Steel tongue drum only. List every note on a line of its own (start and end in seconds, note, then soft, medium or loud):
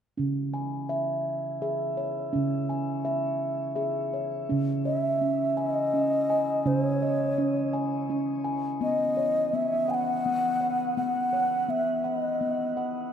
0.17 2.31 C#3 medium
0.17 0.90 C#4 medium
0.54 1.62 G#5 soft
0.89 1.61 E5 medium
1.62 2.34 G#4 medium
1.62 2.70 E5 soft
1.97 3.06 C#5 soft
2.33 4.47 C#3 medium
2.33 3.05 C#4 medium
2.69 3.78 G#5 soft
3.05 3.74 E5 medium
3.76 4.49 G#4 medium
3.76 4.85 E5 soft
4.14 4.84 C#5 soft
4.49 6.62 C#3 medium
4.49 5.20 C#4 medium
4.85 5.94 C#5 soft
5.21 5.92 C#4 medium
5.57 6.29 G#5 medium
5.94 6.64 C#4 medium
6.30 7.38 G#5 soft
6.65 8.77 C#3 medium
6.65 7.37 C#4 medium
7.02 8.10 D#5 soft
7.38 8.09 C#4 medium
7.73 8.43 G#5 medium
8.10 8.82 C#4 medium
8.44 9.17 G#5 medium
8.81 9.52 B3 medium
9.17 10.25 C#5 medium
9.53 10.25 B3 medium
9.88 10.60 F#5 medium
10.26 10.96 B3 medium
10.61 11.69 F#5 medium
10.97 11.67 B3 medium
11.33 12.41 C#5 medium
11.68 12.40 B3 medium
12.04 12.76 F#5 medium
12.41 13.12 B3 medium
12.77 13.13 F#5 medium